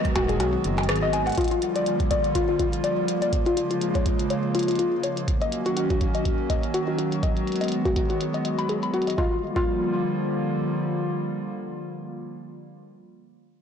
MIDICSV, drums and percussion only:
0, 0, Header, 1, 3, 480
1, 0, Start_track
1, 0, Tempo, 487805
1, 1354, Time_signature, 4, 2, 24, 8
1, 13401, End_track
2, 0, Start_track
2, 0, Title_t, "Percussion blips"
2, 153, Note_on_c, 9, 60, 76
2, 252, Note_off_c, 9, 60, 0
2, 394, Note_on_c, 9, 60, 48
2, 492, Note_off_c, 9, 60, 0
2, 768, Note_on_c, 9, 60, 75
2, 866, Note_off_c, 9, 60, 0
2, 13401, End_track
3, 0, Start_track
3, 0, Title_t, "Drums"
3, 48, Note_on_c, 9, 36, 115
3, 48, Note_on_c, 9, 42, 36
3, 147, Note_off_c, 9, 36, 0
3, 147, Note_off_c, 9, 42, 0
3, 153, Note_on_c, 9, 42, 79
3, 154, Note_on_c, 9, 36, 117
3, 252, Note_off_c, 9, 36, 0
3, 252, Note_off_c, 9, 42, 0
3, 288, Note_on_c, 9, 42, 50
3, 387, Note_off_c, 9, 42, 0
3, 394, Note_on_c, 9, 42, 75
3, 492, Note_off_c, 9, 42, 0
3, 633, Note_on_c, 9, 42, 74
3, 732, Note_off_c, 9, 42, 0
3, 768, Note_on_c, 9, 42, 24
3, 821, Note_off_c, 9, 42, 0
3, 821, Note_on_c, 9, 42, 30
3, 874, Note_off_c, 9, 42, 0
3, 874, Note_on_c, 9, 37, 118
3, 874, Note_on_c, 9, 42, 74
3, 940, Note_off_c, 9, 42, 0
3, 940, Note_on_c, 9, 42, 41
3, 972, Note_off_c, 9, 37, 0
3, 1039, Note_off_c, 9, 42, 0
3, 1114, Note_on_c, 9, 42, 74
3, 1212, Note_off_c, 9, 42, 0
3, 1248, Note_on_c, 9, 42, 24
3, 1274, Note_off_c, 9, 42, 0
3, 1274, Note_on_c, 9, 42, 27
3, 1301, Note_off_c, 9, 42, 0
3, 1301, Note_on_c, 9, 42, 31
3, 1327, Note_off_c, 9, 42, 0
3, 1327, Note_on_c, 9, 42, 34
3, 1354, Note_off_c, 9, 42, 0
3, 1354, Note_on_c, 9, 36, 116
3, 1354, Note_on_c, 9, 42, 72
3, 1387, Note_off_c, 9, 42, 0
3, 1387, Note_on_c, 9, 42, 38
3, 1421, Note_off_c, 9, 42, 0
3, 1421, Note_on_c, 9, 42, 42
3, 1452, Note_off_c, 9, 36, 0
3, 1454, Note_off_c, 9, 42, 0
3, 1454, Note_on_c, 9, 42, 42
3, 1489, Note_off_c, 9, 42, 0
3, 1489, Note_on_c, 9, 42, 35
3, 1587, Note_off_c, 9, 42, 0
3, 1594, Note_on_c, 9, 42, 78
3, 1692, Note_off_c, 9, 42, 0
3, 1728, Note_on_c, 9, 42, 48
3, 1827, Note_off_c, 9, 42, 0
3, 1834, Note_on_c, 9, 42, 76
3, 1932, Note_off_c, 9, 42, 0
3, 1968, Note_on_c, 9, 36, 108
3, 1968, Note_on_c, 9, 42, 35
3, 2066, Note_off_c, 9, 36, 0
3, 2066, Note_off_c, 9, 42, 0
3, 2073, Note_on_c, 9, 42, 75
3, 2074, Note_on_c, 9, 36, 110
3, 2172, Note_off_c, 9, 36, 0
3, 2172, Note_off_c, 9, 42, 0
3, 2207, Note_on_c, 9, 42, 47
3, 2306, Note_off_c, 9, 42, 0
3, 2313, Note_on_c, 9, 42, 75
3, 2314, Note_on_c, 9, 36, 84
3, 2412, Note_off_c, 9, 36, 0
3, 2412, Note_off_c, 9, 42, 0
3, 2553, Note_on_c, 9, 42, 72
3, 2554, Note_on_c, 9, 36, 85
3, 2652, Note_off_c, 9, 36, 0
3, 2652, Note_off_c, 9, 42, 0
3, 2688, Note_on_c, 9, 42, 50
3, 2786, Note_off_c, 9, 42, 0
3, 2794, Note_on_c, 9, 42, 75
3, 2892, Note_off_c, 9, 42, 0
3, 3034, Note_on_c, 9, 42, 73
3, 3132, Note_off_c, 9, 42, 0
3, 3168, Note_on_c, 9, 42, 51
3, 3267, Note_off_c, 9, 42, 0
3, 3274, Note_on_c, 9, 36, 109
3, 3274, Note_on_c, 9, 42, 71
3, 3372, Note_off_c, 9, 36, 0
3, 3372, Note_off_c, 9, 42, 0
3, 3408, Note_on_c, 9, 42, 35
3, 3506, Note_off_c, 9, 42, 0
3, 3513, Note_on_c, 9, 42, 78
3, 3612, Note_off_c, 9, 42, 0
3, 3648, Note_on_c, 9, 42, 50
3, 3746, Note_off_c, 9, 42, 0
3, 3753, Note_on_c, 9, 42, 75
3, 3852, Note_off_c, 9, 42, 0
3, 3887, Note_on_c, 9, 42, 35
3, 3888, Note_on_c, 9, 36, 102
3, 3986, Note_off_c, 9, 42, 0
3, 3987, Note_off_c, 9, 36, 0
3, 3993, Note_on_c, 9, 42, 75
3, 3994, Note_on_c, 9, 36, 108
3, 4091, Note_off_c, 9, 42, 0
3, 4092, Note_off_c, 9, 36, 0
3, 4127, Note_on_c, 9, 42, 47
3, 4226, Note_off_c, 9, 42, 0
3, 4233, Note_on_c, 9, 42, 73
3, 4331, Note_off_c, 9, 42, 0
3, 4474, Note_on_c, 9, 42, 66
3, 4519, Note_off_c, 9, 42, 0
3, 4519, Note_on_c, 9, 42, 55
3, 4554, Note_off_c, 9, 42, 0
3, 4554, Note_on_c, 9, 42, 45
3, 4608, Note_off_c, 9, 42, 0
3, 4608, Note_on_c, 9, 42, 49
3, 4634, Note_off_c, 9, 42, 0
3, 4634, Note_on_c, 9, 42, 32
3, 4679, Note_off_c, 9, 42, 0
3, 4679, Note_on_c, 9, 42, 27
3, 4714, Note_off_c, 9, 42, 0
3, 4714, Note_on_c, 9, 42, 74
3, 4812, Note_off_c, 9, 42, 0
3, 4954, Note_on_c, 9, 42, 72
3, 5053, Note_off_c, 9, 42, 0
3, 5089, Note_on_c, 9, 42, 51
3, 5187, Note_off_c, 9, 42, 0
3, 5194, Note_on_c, 9, 36, 112
3, 5195, Note_on_c, 9, 42, 72
3, 5293, Note_off_c, 9, 36, 0
3, 5293, Note_off_c, 9, 42, 0
3, 5329, Note_on_c, 9, 42, 36
3, 5427, Note_off_c, 9, 42, 0
3, 5434, Note_on_c, 9, 42, 77
3, 5533, Note_off_c, 9, 42, 0
3, 5568, Note_on_c, 9, 42, 49
3, 5666, Note_off_c, 9, 42, 0
3, 5674, Note_on_c, 9, 42, 77
3, 5772, Note_off_c, 9, 42, 0
3, 5808, Note_on_c, 9, 42, 35
3, 5809, Note_on_c, 9, 36, 101
3, 5907, Note_off_c, 9, 36, 0
3, 5907, Note_off_c, 9, 42, 0
3, 5913, Note_on_c, 9, 42, 76
3, 5914, Note_on_c, 9, 36, 106
3, 6012, Note_off_c, 9, 42, 0
3, 6013, Note_off_c, 9, 36, 0
3, 6048, Note_on_c, 9, 42, 49
3, 6146, Note_off_c, 9, 42, 0
3, 6154, Note_on_c, 9, 36, 78
3, 6154, Note_on_c, 9, 42, 74
3, 6252, Note_off_c, 9, 42, 0
3, 6253, Note_off_c, 9, 36, 0
3, 6394, Note_on_c, 9, 36, 79
3, 6394, Note_on_c, 9, 42, 72
3, 6492, Note_off_c, 9, 42, 0
3, 6493, Note_off_c, 9, 36, 0
3, 6528, Note_on_c, 9, 42, 50
3, 6627, Note_off_c, 9, 42, 0
3, 6634, Note_on_c, 9, 42, 75
3, 6732, Note_off_c, 9, 42, 0
3, 6874, Note_on_c, 9, 42, 74
3, 6972, Note_off_c, 9, 42, 0
3, 7008, Note_on_c, 9, 42, 50
3, 7107, Note_off_c, 9, 42, 0
3, 7114, Note_on_c, 9, 36, 108
3, 7115, Note_on_c, 9, 42, 76
3, 7212, Note_off_c, 9, 36, 0
3, 7213, Note_off_c, 9, 42, 0
3, 7249, Note_on_c, 9, 42, 36
3, 7347, Note_off_c, 9, 42, 0
3, 7355, Note_on_c, 9, 42, 36
3, 7400, Note_off_c, 9, 42, 0
3, 7400, Note_on_c, 9, 42, 43
3, 7435, Note_off_c, 9, 42, 0
3, 7435, Note_on_c, 9, 42, 49
3, 7490, Note_off_c, 9, 42, 0
3, 7490, Note_on_c, 9, 42, 55
3, 7515, Note_off_c, 9, 42, 0
3, 7515, Note_on_c, 9, 42, 62
3, 7560, Note_off_c, 9, 42, 0
3, 7560, Note_on_c, 9, 42, 69
3, 7595, Note_off_c, 9, 42, 0
3, 7595, Note_on_c, 9, 42, 78
3, 7693, Note_off_c, 9, 42, 0
3, 7728, Note_on_c, 9, 36, 101
3, 7729, Note_on_c, 9, 42, 36
3, 7827, Note_off_c, 9, 36, 0
3, 7828, Note_off_c, 9, 42, 0
3, 7834, Note_on_c, 9, 36, 108
3, 7835, Note_on_c, 9, 42, 80
3, 7932, Note_off_c, 9, 36, 0
3, 7933, Note_off_c, 9, 42, 0
3, 7970, Note_on_c, 9, 42, 50
3, 8068, Note_off_c, 9, 42, 0
3, 8075, Note_on_c, 9, 42, 77
3, 8173, Note_off_c, 9, 42, 0
3, 8210, Note_on_c, 9, 42, 36
3, 8308, Note_off_c, 9, 42, 0
3, 8314, Note_on_c, 9, 42, 75
3, 8412, Note_off_c, 9, 42, 0
3, 8449, Note_on_c, 9, 42, 52
3, 8547, Note_off_c, 9, 42, 0
3, 8554, Note_on_c, 9, 42, 77
3, 8652, Note_off_c, 9, 42, 0
3, 8688, Note_on_c, 9, 42, 37
3, 8786, Note_off_c, 9, 42, 0
3, 8794, Note_on_c, 9, 42, 34
3, 8874, Note_off_c, 9, 42, 0
3, 8874, Note_on_c, 9, 42, 47
3, 8928, Note_off_c, 9, 42, 0
3, 8928, Note_on_c, 9, 42, 55
3, 8953, Note_off_c, 9, 42, 0
3, 8953, Note_on_c, 9, 42, 63
3, 9034, Note_on_c, 9, 36, 108
3, 9052, Note_off_c, 9, 42, 0
3, 9132, Note_off_c, 9, 36, 0
3, 9408, Note_on_c, 9, 36, 109
3, 9507, Note_off_c, 9, 36, 0
3, 13401, End_track
0, 0, End_of_file